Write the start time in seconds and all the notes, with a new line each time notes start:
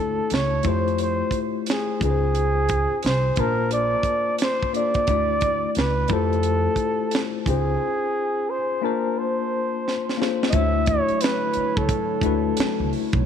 Already playing: D2 A3 D4 E4 F#4 A4 C#5
0.30 C#2 C#5, snare, closed hi-hat
0.63 F2 A3 E4 F4 G4, kick, closed hi-hat
0.68 C5
0.88 closed hi-hat
0.98 C5, closed hi-hat
1.31 kick, closed hi-hat
1.66 G#4, snare, closed hi-hat
2.00 C#2 C#4 D#4 F4 G#4 B4, kick, closed hi-hat
2.11 C5
2.35 closed hi-hat
2.69 kick, closed hi-hat
3.03 C2 C5, snare, closed hi-hat
3.36 A#1 A#3 D4 F4, kick, closed hi-hat
3.40 A#4 C5 A5
3.71 D5, closed hi-hat
4.03 kick, closed hi-hat
4.38 C5, snare, closed hi-hat
4.63 kick
4.73 A#3 D4 F4 A4 D5, closed hi-hat
4.94 kick, closed hi-hat
5.07 D2 A3 D4 E4 F#4, kick, closed hi-hat
5.11 D5
5.41 kick, closed hi-hat
5.75 C#2 B4, snare, closed hi-hat
6.08 F2 A3 E4 F4, kick, closed hi-hat
6.12 G4 A4 C5
6.33 closed hi-hat
6.43 closed hi-hat
6.76 kick, closed hi-hat
7.11 snare, closed hi-hat
7.46 C#2 C#4 D#4 F4 G#4, kick, closed hi-hat
7.50 C5
8.50 C5
8.81 A#3 D4 F4 A#4 C5 A5
9.18 C5
9.88 snare
10.09 snare
10.18 A#3 D4 F4 A4
10.22 C5, snare
10.43 snare
10.49 D3 F#3 A3 D4 E4 C#5 D#5, kick, closed hi-hat
10.54 D2 E4 F#4 C#5 E5
10.86 C#5, kick, closed hi-hat
11.08 muted upright bass stroke, closed hi-hat
11.21 B4, snare, closed hi-hat
11.53 muted upright bass stroke, closed hi-hat
11.77 C#2 A4, kick
11.89 kick, closed hi-hat
12.21 D2 A3 D4 E4 F#4, kick, closed hi-hat
12.26 B4
12.57 muted upright bass stroke, snare, closed hi-hat
12.80 C#2
12.93 open hi-hat
13.13 B1, kick, closed hi-hat